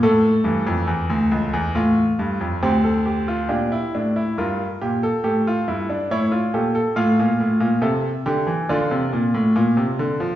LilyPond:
<<
  \new Staff \with { instrumentName = "Grand piano" } { \time 4/4 \key g \minor \tempo 4 = 70 << { a'2 f'4 g'16 a'16 g'16 f'16 | g'4 bes'4 a'4 cis''8 a'8 | f''4 e''4 d''2 | } \\ { r2. c'4 | d'16 e'16 d'16 e'16 f'8 g'16 a'16 g'16 f'16 e'16 d'16 e'16 f'16 g'16 a'16 | f'4 a'8 g'8 f'2 | } >> }
  \new Staff \with { instrumentName = "Grand piano" } { \clef bass \time 4/4 \key g \minor << { a8 e2.~ e8 | r1 | r1 | } \\ { a,8 g,16 f,16 e,16 d,16 cis,16 e,16 a,8 g,16 f,16 d,4 | bes,8 a,8 g,8 bes,8 a,8 g,8 a,8 bes,8 | a,16 bes,16 a,16 bes,16 c8 d16 e16 d16 c16 bes,16 a,16 bes,16 c16 d16 f16 | } >> }
>>